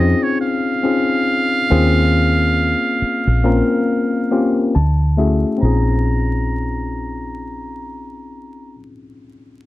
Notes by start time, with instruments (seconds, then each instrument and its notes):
Already playing: fingered electric bass F2, tine electric piano C4 C#4 D#4 F4 G#4, muted trumpet D#5
0.23 muted trumpet C#5
0.41 muted trumpet F5
0.83 tine electric piano C4 C#4 D#4 F4 G#4
1.70 fingered electric bass D#2, tine electric piano A#3 C4 C#4 F4 G#4
3.02 muted fingered electric bass stroke
3.27 fingered electric bass A#1
3.44 tine electric piano A#3 C4 C#4 F4 A#4
4.31 tine electric piano A#3 C4 C#4 F4 G4
4.75 fingered electric bass D2, tine electric piano A5
5.17 tine electric piano A3 C#4 E4 F#4 G#4 E5
5.58 tine electric piano C4 C#4 D#4, muted trumpet A#5
5.62 fingered electric bass A#1, tine electric piano F4 G#4